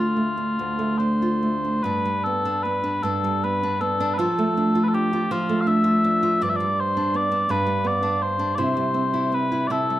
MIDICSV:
0, 0, Header, 1, 3, 480
1, 0, Start_track
1, 0, Tempo, 824176
1, 1067, Time_signature, 3, 2, 24, 8
1, 1068, Tempo, 784314
1, 2508, Tempo, 742574
1, 3948, Tempo, 722892
1, 5388, Tempo, 762389
1, 6278, End_track
2, 0, Start_track
2, 0, Title_t, "Bagpipes"
2, 0, Program_c, 0, 109
2, 0, Note_on_c, 0, 65, 54
2, 570, Note_off_c, 0, 65, 0
2, 570, Note_on_c, 0, 72, 48
2, 1063, Note_off_c, 0, 72, 0
2, 1063, Note_on_c, 0, 71, 64
2, 1316, Note_off_c, 0, 71, 0
2, 1316, Note_on_c, 0, 69, 63
2, 1556, Note_off_c, 0, 69, 0
2, 1556, Note_on_c, 0, 71, 58
2, 1800, Note_off_c, 0, 71, 0
2, 1800, Note_on_c, 0, 69, 61
2, 2052, Note_off_c, 0, 69, 0
2, 2052, Note_on_c, 0, 71, 65
2, 2278, Note_off_c, 0, 71, 0
2, 2278, Note_on_c, 0, 69, 57
2, 2479, Note_off_c, 0, 69, 0
2, 2479, Note_on_c, 0, 71, 63
2, 2505, Note_off_c, 0, 71, 0
2, 2505, Note_on_c, 0, 69, 63
2, 2930, Note_off_c, 0, 69, 0
2, 2930, Note_on_c, 0, 71, 56
2, 2959, Note_off_c, 0, 71, 0
2, 2959, Note_on_c, 0, 69, 56
2, 2995, Note_off_c, 0, 69, 0
2, 2995, Note_on_c, 0, 67, 71
2, 3237, Note_off_c, 0, 67, 0
2, 3237, Note_on_c, 0, 65, 66
2, 3429, Note_off_c, 0, 65, 0
2, 3429, Note_on_c, 0, 77, 62
2, 3471, Note_off_c, 0, 77, 0
2, 3471, Note_on_c, 0, 76, 78
2, 3953, Note_off_c, 0, 76, 0
2, 3953, Note_on_c, 0, 74, 77
2, 4000, Note_off_c, 0, 74, 0
2, 4000, Note_on_c, 0, 76, 62
2, 4043, Note_off_c, 0, 76, 0
2, 4043, Note_on_c, 0, 74, 75
2, 4205, Note_off_c, 0, 74, 0
2, 4205, Note_on_c, 0, 72, 81
2, 4446, Note_off_c, 0, 72, 0
2, 4446, Note_on_c, 0, 74, 84
2, 4673, Note_off_c, 0, 74, 0
2, 4673, Note_on_c, 0, 71, 79
2, 4915, Note_off_c, 0, 71, 0
2, 4915, Note_on_c, 0, 74, 69
2, 5149, Note_off_c, 0, 74, 0
2, 5149, Note_on_c, 0, 72, 66
2, 5368, Note_off_c, 0, 72, 0
2, 5368, Note_on_c, 0, 74, 68
2, 5390, Note_off_c, 0, 74, 0
2, 5390, Note_on_c, 0, 72, 68
2, 5865, Note_off_c, 0, 72, 0
2, 5865, Note_on_c, 0, 71, 64
2, 6074, Note_off_c, 0, 71, 0
2, 6074, Note_on_c, 0, 74, 63
2, 6101, Note_off_c, 0, 74, 0
2, 6101, Note_on_c, 0, 69, 63
2, 6278, Note_off_c, 0, 69, 0
2, 6278, End_track
3, 0, Start_track
3, 0, Title_t, "Nylon-string guitar"
3, 0, Program_c, 1, 24
3, 0, Note_on_c, 1, 38, 50
3, 0, Note_on_c, 1, 57, 41
3, 0, Note_on_c, 1, 62, 36
3, 0, Note_on_c, 1, 65, 47
3, 89, Note_off_c, 1, 57, 0
3, 96, Note_on_c, 1, 57, 34
3, 215, Note_off_c, 1, 62, 0
3, 218, Note_on_c, 1, 62, 39
3, 334, Note_off_c, 1, 38, 0
3, 345, Note_on_c, 1, 38, 48
3, 452, Note_off_c, 1, 57, 0
3, 459, Note_on_c, 1, 57, 40
3, 578, Note_off_c, 1, 62, 0
3, 581, Note_on_c, 1, 62, 40
3, 709, Note_off_c, 1, 65, 0
3, 711, Note_on_c, 1, 65, 39
3, 824, Note_off_c, 1, 57, 0
3, 831, Note_on_c, 1, 57, 36
3, 956, Note_off_c, 1, 62, 0
3, 958, Note_on_c, 1, 62, 35
3, 1069, Note_off_c, 1, 38, 0
3, 1071, Note_on_c, 1, 43, 58
3, 1078, Note_off_c, 1, 65, 0
3, 1080, Note_off_c, 1, 62, 0
3, 1080, Note_on_c, 1, 62, 47
3, 1119, Note_off_c, 1, 57, 0
3, 1203, Note_on_c, 1, 55, 45
3, 1328, Note_on_c, 1, 59, 40
3, 1444, Note_off_c, 1, 62, 0
3, 1447, Note_on_c, 1, 62, 50
3, 1561, Note_off_c, 1, 59, 0
3, 1569, Note_on_c, 1, 59, 38
3, 1679, Note_off_c, 1, 62, 0
3, 1682, Note_on_c, 1, 62, 48
3, 1794, Note_off_c, 1, 43, 0
3, 1801, Note_on_c, 1, 43, 53
3, 1807, Note_off_c, 1, 62, 0
3, 1809, Note_on_c, 1, 62, 44
3, 1923, Note_off_c, 1, 55, 0
3, 1930, Note_on_c, 1, 55, 45
3, 2042, Note_off_c, 1, 59, 0
3, 2050, Note_on_c, 1, 59, 43
3, 2167, Note_off_c, 1, 62, 0
3, 2169, Note_on_c, 1, 62, 50
3, 2269, Note_off_c, 1, 59, 0
3, 2276, Note_on_c, 1, 59, 52
3, 2394, Note_off_c, 1, 62, 0
3, 2396, Note_on_c, 1, 62, 54
3, 2509, Note_on_c, 1, 53, 64
3, 2510, Note_off_c, 1, 62, 0
3, 2513, Note_on_c, 1, 65, 55
3, 2555, Note_off_c, 1, 59, 0
3, 2556, Note_off_c, 1, 43, 0
3, 2561, Note_off_c, 1, 55, 0
3, 2636, Note_on_c, 1, 57, 54
3, 2758, Note_on_c, 1, 62, 48
3, 2871, Note_off_c, 1, 65, 0
3, 2874, Note_on_c, 1, 65, 53
3, 2994, Note_off_c, 1, 62, 0
3, 2997, Note_on_c, 1, 62, 44
3, 3115, Note_off_c, 1, 65, 0
3, 3118, Note_on_c, 1, 65, 52
3, 3231, Note_off_c, 1, 53, 0
3, 3234, Note_on_c, 1, 53, 62
3, 3236, Note_off_c, 1, 65, 0
3, 3238, Note_on_c, 1, 65, 53
3, 3345, Note_off_c, 1, 57, 0
3, 3353, Note_on_c, 1, 57, 51
3, 3463, Note_off_c, 1, 62, 0
3, 3465, Note_on_c, 1, 62, 48
3, 3574, Note_off_c, 1, 65, 0
3, 3576, Note_on_c, 1, 65, 59
3, 3705, Note_off_c, 1, 62, 0
3, 3708, Note_on_c, 1, 62, 63
3, 3825, Note_off_c, 1, 65, 0
3, 3828, Note_on_c, 1, 65, 59
3, 3948, Note_on_c, 1, 43, 65
3, 3949, Note_off_c, 1, 65, 0
3, 3951, Note_off_c, 1, 62, 0
3, 3951, Note_on_c, 1, 62, 63
3, 3996, Note_off_c, 1, 57, 0
3, 4073, Note_on_c, 1, 55, 55
3, 4093, Note_off_c, 1, 53, 0
3, 4307, Note_off_c, 1, 62, 0
3, 4315, Note_on_c, 1, 62, 56
3, 4431, Note_on_c, 1, 59, 43
3, 4539, Note_off_c, 1, 62, 0
3, 4547, Note_on_c, 1, 62, 53
3, 4655, Note_off_c, 1, 43, 0
3, 4662, Note_off_c, 1, 62, 0
3, 4662, Note_on_c, 1, 43, 60
3, 4670, Note_on_c, 1, 62, 54
3, 4776, Note_off_c, 1, 55, 0
3, 4779, Note_on_c, 1, 55, 44
3, 4889, Note_off_c, 1, 59, 0
3, 4897, Note_on_c, 1, 59, 50
3, 5010, Note_off_c, 1, 62, 0
3, 5018, Note_on_c, 1, 62, 51
3, 5138, Note_off_c, 1, 59, 0
3, 5254, Note_off_c, 1, 62, 0
3, 5262, Note_on_c, 1, 62, 56
3, 5385, Note_on_c, 1, 48, 63
3, 5386, Note_off_c, 1, 62, 0
3, 5389, Note_on_c, 1, 64, 51
3, 5431, Note_off_c, 1, 43, 0
3, 5501, Note_off_c, 1, 55, 0
3, 5504, Note_on_c, 1, 55, 49
3, 5614, Note_on_c, 1, 60, 45
3, 5734, Note_off_c, 1, 64, 0
3, 5736, Note_on_c, 1, 64, 47
3, 5849, Note_off_c, 1, 60, 0
3, 5852, Note_on_c, 1, 60, 40
3, 5974, Note_off_c, 1, 64, 0
3, 5976, Note_on_c, 1, 64, 47
3, 6085, Note_off_c, 1, 48, 0
3, 6092, Note_on_c, 1, 48, 51
3, 6093, Note_off_c, 1, 64, 0
3, 6096, Note_on_c, 1, 64, 45
3, 6210, Note_off_c, 1, 55, 0
3, 6218, Note_on_c, 1, 55, 41
3, 6278, Note_off_c, 1, 48, 0
3, 6278, Note_off_c, 1, 55, 0
3, 6278, Note_off_c, 1, 60, 0
3, 6278, Note_off_c, 1, 64, 0
3, 6278, End_track
0, 0, End_of_file